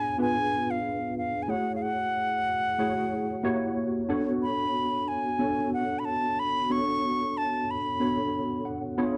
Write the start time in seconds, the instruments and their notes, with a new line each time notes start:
Already playing: tine electric piano B3 D4 F4 G#4 C#5, flute G#5
0.18 tine electric piano B3 D4 F4 G#4 B4, flute G#5
0.71 flute F5
1.18 flute F5
1.43 flute G#5
1.48 tine electric piano A3 E4 F#4 G#4 C#5, flute F#5
1.76 flute F5
1.82 flute F#5
2.78 tine electric piano A3 E4 F#4 G#4 C#5
3.43 tine electric piano A#3 E4 F#4 G4 C#5
4.09 tine electric piano B3 D4 F#4 A4 C#5
4.43 flute B5
5.08 flute G#5
5.39 tine electric piano B3 D4 F#4 A4 C#5
5.74 flute F#5
5.99 flute B5
6.05 flute A5
6.39 flute B5
6.69 tine electric piano B3 D4 F#4 A4 C#5, flute C#6
7.37 flute A5
7.71 flute B5
8.00 tine electric piano B3 D4 F#4 A4 C#5
8.65 tine electric piano F#5
8.98 tine electric piano B3 D4 F4 G#4 C#5 B5